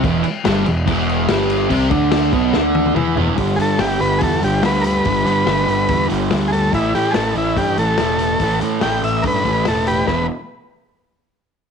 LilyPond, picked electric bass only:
\new Staff \with { instrumentName = "Picked electric bass" } { \clef bass \time 4/4 \key e \minor \tempo 4 = 144 e,,8 r8 g,,8 e,,8 e,,4 g,,4 | c,8 d,4 b,,8 d,4 e,8 e,,8 | g,,8 g,8 g,,8 g,,8 e,8 g,,8 d,4 | g,,8 g,8 g,,8 g,,8 e,8 g,,8 d,4 |
a,,8 a,8 a,,8 a,,8 g,8 a,,8 e,,4 | a,,8 a,8 a,,8 a,,8 g,8 a,,8 e,,4 | e,,8 r2. r8 | }